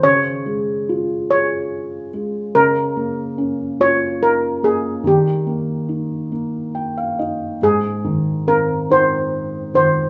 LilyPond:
<<
  \new Staff \with { instrumentName = "Steel pan" } { \time 6/8 \key aes \major \tempo 4. = 47 des''4. des''4 r8 | bes'4. des''8 bes'8 aes'8 | g'2~ g'8 r8 | aes'4 bes'8 c''4 c''8 | }
  \new Staff \with { instrumentName = "Felt piano" } { \time 6/8 \key aes \major r2. | r2. | r2 g''16 f''16 ees''8 | r2. | }
  \new Staff \with { instrumentName = "Felt piano" } { \time 6/8 \key aes \major des8 aes8 f'8 aes'4 aes8 | des8 bes8 des'8 f'4 bes8 | ees8 bes8 ees'8 bes4 ees'8 | aes,8 ees8 c'8 ees'4 ees8 | }
>>